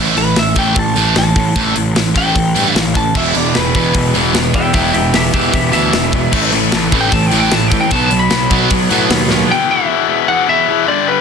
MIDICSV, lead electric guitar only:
0, 0, Header, 1, 2, 480
1, 0, Start_track
1, 0, Key_signature, 1, "minor"
1, 0, Tempo, 396563
1, 1886, Time_signature, 4, 2, 24, 8
1, 13567, End_track
2, 0, Start_track
2, 0, Title_t, "Lead electric guitar"
2, 0, Program_c, 0, 29
2, 214, Note_on_c, 0, 71, 100
2, 441, Note_off_c, 0, 71, 0
2, 472, Note_on_c, 0, 76, 88
2, 691, Note_off_c, 0, 76, 0
2, 710, Note_on_c, 0, 79, 82
2, 930, Note_off_c, 0, 79, 0
2, 958, Note_on_c, 0, 81, 88
2, 1408, Note_off_c, 0, 81, 0
2, 1432, Note_on_c, 0, 81, 84
2, 2352, Note_off_c, 0, 81, 0
2, 2632, Note_on_c, 0, 79, 109
2, 3297, Note_off_c, 0, 79, 0
2, 3297, Note_on_c, 0, 77, 109
2, 3554, Note_off_c, 0, 77, 0
2, 3591, Note_on_c, 0, 81, 75
2, 3814, Note_off_c, 0, 81, 0
2, 3838, Note_on_c, 0, 76, 94
2, 4058, Note_off_c, 0, 76, 0
2, 4080, Note_on_c, 0, 74, 82
2, 4300, Note_off_c, 0, 74, 0
2, 4313, Note_on_c, 0, 71, 91
2, 4536, Note_off_c, 0, 71, 0
2, 4552, Note_on_c, 0, 71, 105
2, 5009, Note_off_c, 0, 71, 0
2, 5503, Note_on_c, 0, 76, 73
2, 5514, Note_on_c, 0, 79, 92
2, 5727, Note_off_c, 0, 76, 0
2, 5731, Note_off_c, 0, 79, 0
2, 5739, Note_on_c, 0, 76, 88
2, 5750, Note_on_c, 0, 79, 80
2, 5962, Note_off_c, 0, 76, 0
2, 5973, Note_off_c, 0, 79, 0
2, 5980, Note_on_c, 0, 76, 79
2, 5993, Note_on_c, 0, 79, 76
2, 6201, Note_off_c, 0, 76, 0
2, 6217, Note_off_c, 0, 79, 0
2, 6230, Note_on_c, 0, 67, 71
2, 6243, Note_on_c, 0, 76, 83
2, 6447, Note_off_c, 0, 67, 0
2, 6447, Note_off_c, 0, 76, 0
2, 6459, Note_on_c, 0, 67, 91
2, 6466, Note_on_c, 0, 76, 81
2, 6681, Note_off_c, 0, 67, 0
2, 6692, Note_off_c, 0, 76, 0
2, 6705, Note_on_c, 0, 67, 71
2, 6716, Note_on_c, 0, 76, 86
2, 6924, Note_off_c, 0, 67, 0
2, 6925, Note_off_c, 0, 76, 0
2, 6939, Note_on_c, 0, 76, 104
2, 7870, Note_off_c, 0, 76, 0
2, 8480, Note_on_c, 0, 79, 113
2, 8624, Note_off_c, 0, 79, 0
2, 8639, Note_on_c, 0, 81, 85
2, 8795, Note_off_c, 0, 81, 0
2, 8795, Note_on_c, 0, 79, 83
2, 8942, Note_off_c, 0, 79, 0
2, 8958, Note_on_c, 0, 79, 84
2, 9126, Note_off_c, 0, 79, 0
2, 9126, Note_on_c, 0, 81, 91
2, 9288, Note_off_c, 0, 81, 0
2, 9288, Note_on_c, 0, 79, 93
2, 9428, Note_off_c, 0, 79, 0
2, 9448, Note_on_c, 0, 79, 86
2, 9588, Note_off_c, 0, 79, 0
2, 9595, Note_on_c, 0, 81, 94
2, 9741, Note_off_c, 0, 81, 0
2, 9758, Note_on_c, 0, 81, 95
2, 9903, Note_off_c, 0, 81, 0
2, 9918, Note_on_c, 0, 83, 93
2, 10373, Note_off_c, 0, 83, 0
2, 11516, Note_on_c, 0, 79, 113
2, 11728, Note_off_c, 0, 79, 0
2, 11753, Note_on_c, 0, 76, 111
2, 12445, Note_on_c, 0, 78, 108
2, 12482, Note_off_c, 0, 76, 0
2, 12670, Note_off_c, 0, 78, 0
2, 12699, Note_on_c, 0, 76, 112
2, 13139, Note_off_c, 0, 76, 0
2, 13172, Note_on_c, 0, 74, 88
2, 13412, Note_on_c, 0, 71, 92
2, 13416, Note_off_c, 0, 74, 0
2, 13567, Note_off_c, 0, 71, 0
2, 13567, End_track
0, 0, End_of_file